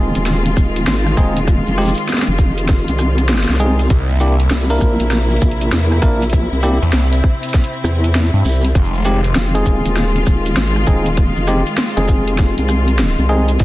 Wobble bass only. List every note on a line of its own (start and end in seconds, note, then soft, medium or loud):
0.00 0.13 D#1 loud
0.16 0.55 D#1 loud
0.57 0.85 D#1 loud
0.87 1.16 G#1 loud
1.17 1.64 D#1 loud
1.67 1.94 F1 loud
2.28 2.85 F1 loud
2.88 3.46 C2 loud
3.49 3.89 C2 medium
4.51 4.79 C2 loud
4.81 4.97 A#1 loud
5.00 5.40 A#1 loud
5.42 5.70 A#1 loud
5.72 6.01 E2 loud
6.02 6.49 A#1 loud
6.52 6.79 C2 loud
7.84 8.31 E2 loud
8.45 8.73 C2 loud
9.36 9.64 F1 loud
9.66 9.82 D#1 medium
9.85 10.25 D#1 loud
10.27 10.55 D#1 medium
10.57 10.85 G#1 loud
10.87 11.34 D#1 loud
11.36 11.64 F1 loud
11.97 12.55 F1 loud
12.58 13.16 C2 loud
13.19 13.58 C2 loud